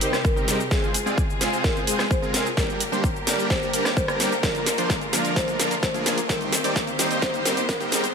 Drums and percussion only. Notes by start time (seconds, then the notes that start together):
0.01 open hi-hat, shaker
0.13 cross-stick, snare, shaker
0.25 kick, shaker
0.37 shaker
0.48 snare, open hi-hat, shaker
0.60 shaker
0.71 kick, snare, shaker
0.84 shaker
0.94 open hi-hat, shaker
1.07 shaker
1.18 kick, shaker
1.30 shaker
1.41 snare, open hi-hat, shaker
1.53 shaker
1.64 kick, snare, shaker
1.77 shaker
1.87 open hi-hat, shaker
1.99 cross-stick, snare, shaker
2.11 kick, shaker
2.23 shaker
2.34 snare, open hi-hat, shaker
2.46 shaker
2.57 kick, snare, shaker
2.70 shaker
2.80 open hi-hat, shaker
2.93 shaker
3.04 kick, shaker
3.16 shaker
3.27 snare, open hi-hat, shaker
3.39 shaker
3.50 kick, snare, shaker
3.63 shaker
3.73 open hi-hat, shaker
3.85 cross-stick, snare, shaker
3.97 kick, shaker
4.08 cross-stick, shaker
4.20 snare, open hi-hat, shaker
4.32 shaker
4.43 kick, snare, closed hi-hat, shaker
4.55 closed hi-hat, shaker
4.66 snare, open hi-hat, shaker
4.78 closed hi-hat, shaker
4.90 kick, snare, closed hi-hat, shaker
5.01 closed hi-hat, shaker
5.13 snare, open hi-hat, shaker
5.25 closed hi-hat, shaker
5.36 kick, snare, closed hi-hat, shaker
5.48 closed hi-hat, shaker
5.60 snare, open hi-hat, shaker
5.71 closed hi-hat, shaker
5.83 kick, snare, closed hi-hat, shaker
5.94 closed hi-hat, shaker
6.06 snare, open hi-hat, shaker
6.18 closed hi-hat, shaker
6.29 kick, snare, closed hi-hat, shaker
6.41 closed hi-hat, shaker
6.53 snare, open hi-hat, shaker
6.64 closed hi-hat, shaker
6.76 kick, snare, closed hi-hat, shaker
6.87 closed hi-hat, shaker
6.99 snare, open hi-hat, shaker
7.11 closed hi-hat, shaker
7.22 kick, snare, closed hi-hat, shaker
7.34 closed hi-hat, shaker
7.45 snare, open hi-hat, shaker
7.57 closed hi-hat, shaker
7.69 kick, snare, closed hi-hat, shaker
7.80 closed hi-hat, shaker
7.92 snare, open hi-hat, shaker
8.04 closed hi-hat, shaker